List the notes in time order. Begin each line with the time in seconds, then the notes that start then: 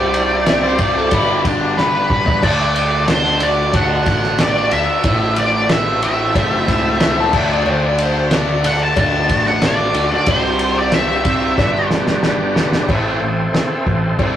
Already playing: C2 C3 G3 C4 E4 G4 C5 D5
0.14 ride
0.46 C3 G3 C4 E5, snare, ride, cowbell
0.65 C5
0.78 C3 G3 C4 D5, kick, ride
0.98 A4
1.11 G1 G2 D3 G3 D4 E4 G4 B4 D5, kick, ride, cowbell
1.44 G1 D4, kick, snare, ride
1.78 G2 D3 G3 B4, snare, cowbell
2.09 A1 G2 D3 G3, kick
2.26 floor tom
2.42 D2 D3 A3 D4 F#4 A4 D5, kick, cowbell, crash
2.76 ride
3.07 D3 A3 D4 C5, snare, ride, cowbell
3.40 D3 A3 D4 D5, ride
3.73 D2 D3 A3 D4 F#5, kick, ride, cowbell
4.06 A1 F#5, kick, snare, ride
4.23 snare
4.39 D3 A3 D4 D5, snare, ride, cowbell
4.71 D2 D3 A3 D4 E5, ride
5.04 A1 A2 E3 A3 C4 E4 A4 C5, kick, ride, cowbell
5.36 D5, ride
5.69 A2 E3 A3 E5, snare, ride, cowbell
6.03 A2 E3 A3 E5, ride
6.34 F#1 A2 E3 A3, kick, ride, cowbell
6.68 C#2, kick, snare, ride
7.00 A2 E3 A3 E5, snare, ride, cowbell
7.20 A5
7.32 D2 D3 A3 D4 F#4 A4 D5, kick, crash
7.37 E5
7.54 D5
7.65 D2 D3 A3 D4, cowbell
7.70 C5
7.87 D5
7.98 ride
8.03 C5
8.31 D3 A3 D4, snare, ride, cowbell
8.35 D5
8.64 D3 A3 D4 F#5, ride
8.83 A5
8.96 D2 D3 A3 D4 A5, kick, ride, cowbell
9.29 A1, kick, ride
9.46 F#5, snare
9.62 D3 A3 D4 D5, snare, ride, cowbell
9.94 D2 D3 A3 D4, ride
10.14 D5
10.26 C2 C3 G3 C4 G4 C5 D5, kick, ride, cowbell
10.31 E4 C5
10.59 ride
10.78 D5
10.92 C3 G3 C4 E5, snare, ride, cowbell
11.25 C3 G3 C4, kick, ride
11.57 G1 G2 D3 G3 D4 G4 B4 D5, kick, snare, cowbell
11.90 G1, snare
12.07 snare
12.23 G2 D3 G3, snare, cowbell
12.55 G1 G2 D3 G3, snare
12.73 snare
12.87 A1 A2 E3 A3 C4 E4 A4 C5, kick, cowbell, crash
13.21 A1 A2 E3
13.54 muted distorted electric guitar stroke, muted picked electric bass stroke, snare, cowbell, crash
13.86 A1 A2 E3, kick
14.19 C2 C3 G3 C4, kick, cowbell, crash